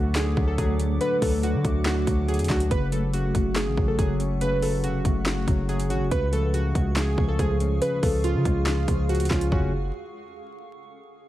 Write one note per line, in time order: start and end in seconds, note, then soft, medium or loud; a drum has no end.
0.00 0.35 D2 loud
0.00 0.15 D3 medium
0.00 0.36 F#3 medium
0.00 1.01 A3 medium
0.00 6.07 A3 medium
0.00 0.13 F#4 medium
0.00 6.07 F#5 medium
0.00 2.68 D6 medium
0.15 1.00 D3 medium
0.15 0.46 G#4 medium
0.15 snare loud
0.15 clap loud
0.15 closed hi-hat medium
0.37 0.57 D2 loud
0.37 0.57 F#3 medium
0.37 kick loud
0.48 0.56 A4 medium
0.58 0.99 D2 loud
0.58 1.21 F#3 medium
0.58 0.74 G#4 medium
0.58 kick loud
0.58 closed hi-hat medium
0.79 1.86 D4 medium
0.79 closed hi-hat medium
1.01 1.42 D3 loud
1.01 1.17 B4 loud
1.01 closed hi-hat medium
1.22 1.56 D2 loud
1.22 2.05 F#3 medium
1.22 1.38 A4 medium
1.22 kick loud
1.22 open hi-hat medium
1.43 1.84 D3 medium
1.43 1.83 F#4 medium
1.43 closed hi-hat medium
1.54 1.64 D3 loud
1.64 2.05 D2 loud
1.64 2.71 A3 medium
1.64 kick medium
1.64 closed hi-hat medium
1.85 2.71 D3 medium
1.85 2.26 F#4 medium
1.85 snare loud
1.85 clap medium
1.85 closed hi-hat medium
2.06 2.40 D2 loud
2.06 2.27 F#3 medium
2.06 kick loud
2.06 closed hi-hat medium
2.28 2.71 F#3 medium
2.28 2.45 G#4 medium
2.28 closed hi-hat soft
2.34 closed hi-hat medium
2.39 2.49 F2 loud
2.39 closed hi-hat medium
2.44 closed hi-hat medium
2.50 2.70 D2 loud
2.50 2.71 D4 medium
2.50 2.66 F#4 medium
2.50 kick loud
2.50 snare medium
2.50 clap medium
2.60 closed hi-hat medium
2.71 3.32 F#1 loud
2.71 3.12 C#3 loud
2.71 2.87 B4 loud
2.71 9.48 C#6 medium
2.71 kick loud
2.71 closed hi-hat medium
2.92 3.77 F#3 medium
2.92 3.09 A4 medium
2.92 closed hi-hat medium
3.14 3.55 C#3 medium
3.14 3.54 F#4 medium
3.14 closed hi-hat medium
3.34 3.68 F#1 loud
3.34 4.41 A3 medium
3.34 kick medium
3.34 closed hi-hat medium
3.56 4.40 C#3 medium
3.56 3.86 G#4 medium
3.56 snare loud
3.56 clap loud
3.56 closed hi-hat medium
3.67 3.77 A1 loud
3.77 3.98 A1 loud
3.77 3.98 F#3 medium
3.77 kick loud
3.88 3.96 A4 medium
3.99 4.85 F#1 loud
3.99 4.61 F#3 medium
3.99 4.15 G#4 medium
3.99 kick loud
3.99 closed hi-hat medium
4.20 5.26 C#4 medium
4.20 closed hi-hat medium
4.41 4.83 C#3 medium
4.41 4.57 B4 loud
4.41 closed hi-hat medium
4.62 5.46 F#3 medium
4.62 4.79 A4 medium
4.62 open hi-hat medium
4.84 5.04 F1 loud
4.84 5.25 C#3 medium
4.84 5.24 F#4 medium
4.84 closed hi-hat medium
5.05 5.46 F#1 loud
5.05 6.12 A3 medium
5.05 kick medium
5.05 closed hi-hat medium
5.26 6.10 C#3 medium
5.26 5.66 F#4 medium
5.26 snare loud
5.26 clap loud
5.26 closed hi-hat medium
5.48 5.92 F#1 loud
5.48 5.68 F#3 medium
5.48 kick loud
5.48 closed hi-hat medium
5.69 6.11 F#3 loud
5.69 5.85 G#4 medium
5.69 closed hi-hat soft
5.79 closed hi-hat medium
5.89 6.02 G#1 loud
5.89 6.11 C#4 medium
5.89 6.06 F#4 medium
5.89 closed hi-hat medium
6.01 6.11 F#1 loud
6.11 6.73 C#2 loud
6.11 6.52 C#3 medium
6.11 9.48 G#4 medium
6.11 6.28 B4 loud
6.11 9.48 F5 medium
6.11 kick loud
6.11 closed hi-hat medium
6.33 7.17 F3 medium
6.33 6.49 A4 medium
6.33 closed hi-hat medium
6.53 6.95 C#3 medium
6.53 6.94 F#4 medium
6.53 closed hi-hat medium
6.75 7.16 C#2 loud
6.75 7.81 G#3 medium
6.75 kick medium
6.75 closed hi-hat medium
6.96 7.80 C#3 medium
6.96 7.27 G#4 medium
6.96 snare loud
6.96 clap loud
6.96 closed hi-hat medium
7.18 7.38 C#2 loud
7.18 7.38 F3 medium
7.18 kick loud
7.28 7.37 A4 medium
7.39 7.80 C#2 loud
7.39 8.01 F3 medium
7.39 7.55 G#4 medium
7.39 kick medium
7.39 closed hi-hat medium
7.60 8.67 C#4 medium
7.60 closed hi-hat medium
7.82 8.23 C#3 medium
7.82 7.98 B4 medium
7.82 closed hi-hat medium
8.02 8.36 C#2 loud
8.02 8.88 F3 medium
8.02 8.19 A4 medium
8.02 kick loud
8.02 open hi-hat medium
8.24 8.65 C#3 medium
8.24 8.64 F4 loud
8.24 closed hi-hat medium
8.35 8.45 C#3 loud
8.45 8.86 C#2 loud
8.45 9.52 G#3 medium
8.45 kick medium
8.45 closed hi-hat medium
8.67 9.51 C#3 medium
8.67 9.07 F4 medium
8.67 snare loud
8.67 clap loud
8.67 closed hi-hat medium
8.88 9.21 C#2 loud
8.88 9.08 F3 medium
8.88 kick loud
8.88 closed hi-hat medium
9.09 9.52 F3 medium
9.09 9.26 F#4 medium
9.09 closed hi-hat soft
9.15 closed hi-hat medium
9.20 9.30 D2 loud
9.20 closed hi-hat medium
9.25 closed hi-hat medium
9.31 9.51 C#2 loud
9.31 9.51 C#4 medium
9.31 9.47 F4 medium
9.31 kick loud
9.31 snare medium
9.31 clap medium
9.41 closed hi-hat medium
9.52 9.91 F#1 loud
9.52 9.72 C#3 medium
9.52 9.72 F#3 medium
9.52 9.72 A3 medium
9.52 9.72 C#4 loud
9.52 9.72 F#4 medium
9.52 kick loud
9.52 floor tom loud